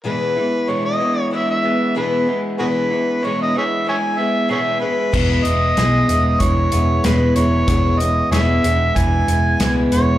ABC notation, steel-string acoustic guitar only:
X:1
M:4/4
L:1/8
Q:1/4=94
K:E
V:1 name="Steel-string acoustic guitar" clef=bass
[E,,B,,E,G,B,E] [E,G,B,E] [E,,B,,E,G,B,E] [E,G,B,E] [E,G,B,E] [E,G,B,E] [E,,B,,E,G,B,E] [E,G,B,E] | [E,,B,,E,G,B,E] [E,G,B,E] [E,,B,,E,G,B,E] [E,G,B,E] [E,G,B,E] [E,G,B,E] [E,,B,,E,G,B,E] [E,G,B,E] | [E,,B,,E,G,B,E] [E,G,B,E] [E,,B,,E,G,B,E] [E,G,B,E] [E,G,B,E] [E,G,B,E] [E,,B,,E,G,B,E] [E,G,B,E] | [E,,B,,E,G,B,E] [E,G,B,E] [E,,B,,E,G,B,E] [E,G,B,E] [E,G,B,E] [E,G,B,E] [E,,B,,E,G,B,E] [E,G,B,E] |]